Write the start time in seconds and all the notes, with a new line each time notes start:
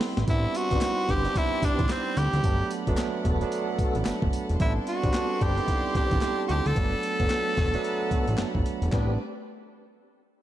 Already playing: G3 B3 C4 E4 A4 G5 B5 C6
0.01 snare, open hi-hat
0.17 A1, snare, closed hi-hat
0.28 A1 G3 B3 C4 D4 E4 D5 B5 C6, kick, closed hi-hat, tambourine
0.54 F#4, closed hi-hat, tambourine
0.71 A1 G3 B3 C4 D4 D#4 G4 B4, kick, closed hi-hat
0.79 E4, snare, clap, closed hi-hat, tambourine
1.08 G1 C4 D4 G4 B4, kick, closed hi-hat
1.25 G3 B3 C4 D4, closed hi-hat
1.35 E4, kick, closed hi-hat, tambourine
1.62 A1 C4 D4 G4 B4, kick, closed hi-hat, tambourine
1.79 A1, kick, closed hi-hat
1.89 C4, snare, clap, closed hi-hat, tambourine
2.17 D2 G4, closed hi-hat, tambourine
2.33 D2, closed hi-hat
2.44 G1 F#3 A3 B3 D4 A4 F#5 A5, kick, closed hi-hat, tambourine
2.70 closed hi-hat, tambourine
2.87 F#1 F#3 A3 B3 D4 F#4 A4, kick, closed hi-hat
2.97 snare, clap, closed hi-hat, tambourine
3.24 E1 B3 F#4 A4, kick, closed hi-hat
3.41 F#3 A3 B3 D4, closed hi-hat
3.52 closed hi-hat, tambourine
3.79 A1 B3 F#4 A4, kick, closed hi-hat, tambourine
3.95 A1, closed hi-hat
4.05 G1, snare, clap, closed hi-hat, tambourine
4.22 G1, kick
4.33 closed hi-hat, tambourine
4.49 E1, closed hi-hat
4.60 A1 G3 B3 C4 D4 E4 A4 D5 C6, kick, closed hi-hat
4.87 F#4, closed hi-hat
5.03 A1 G3 B3 C4 D4 G4 B4, kick, closed hi-hat
5.14 snare, clap, closed hi-hat
5.41 G1 C4 D4 G4 B4, kick, closed hi-hat
5.57 G3 B3 C4 D#4, closed hi-hat
5.65 E4, kick, closed hi-hat
5.95 A1 C4 D4 G4 B4, kick, closed hi-hat
6.11 A1, kick, closed hi-hat
6.21 snare, clap, closed hi-hat
6.48 D2 F#4 G4, closed hi-hat
6.66 D2 A4, closed hi-hat
6.76 G1 F#3 A3 B3 D4 A4 F#5 B5, kick, closed hi-hat
7.03 closed hi-hat
7.19 F#1 F#3 A3 B3 D4 F#4 A4, kick, closed hi-hat
7.30 snare, clap, closed hi-hat
7.57 E1 B3 F#4 A4, kick, snare, open hi-hat
7.74 F#3 A3 B3 D4, closed hi-hat
7.84 closed hi-hat
8.11 A1 B3 F#4 A4, kick, closed hi-hat
8.28 A1, closed hi-hat
8.38 G1, snare, clap, closed hi-hat
8.55 G1, kick
8.66 closed hi-hat
8.82 E1, closed hi-hat
8.92 A1 G3 A3 B3 C4 D4 G4 B4 C5 D5, kick, snare, clap